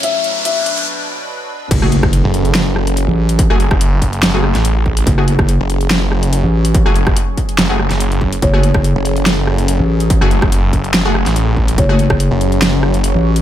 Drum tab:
CC |----------------|x---------------|----------------|----------------|
HH |x-x-x-xx--------|x-x-x-xxx--xx--x|x-x-x-xxx--xx--x|x-x-x-xxx--xx--x|
SD |----------------|-r-r----o-r-----|-r-r----o-ro----|-r-r----o-r-----|
BD |----------------|o--o------------|o--o--o-------o-|o--o------------|

CC |----------------|----------------|----------------|----------------|
HH |x-x-x-xxx--xxx-x|x-x-x-xxx--xx--x|x-x-x-xxx--xx--x|x-x-x-xxx--xx--x|
SD |-r-r----o-ro----|-r-r----o-r-----|-r-r----o-ro----|-r-r----o-r-----|
BD |o--o--o-------o-|o--o------------|o--o--o-------o-|o--o------------|